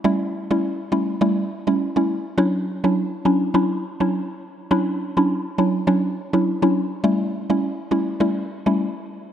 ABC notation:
X:1
M:4/4
L:1/16
Q:"Swing 16ths" 1/4=103
K:Amix
V:1 name="Synth pluck"
[G,A,CE]3 [G,A,CE] z2 [G,A,CE] z [G,A,CE] z2 [G,A,CE] z [G,A,CE] z2 | [F,CDE]3 [F,CDE] z2 [F,CDE] z [F,CDE] z2 [F,CDE] z4 | [F,CDE]3 [F,CDE] z2 [F,CDE] z [F,CDE] z2 [F,CDE] z [F,CDE] z2 | [G,A,CE]3 [G,A,CE] z2 [G,A,CE] z [G,A,CE] z2 [G,A,CE] z4 |]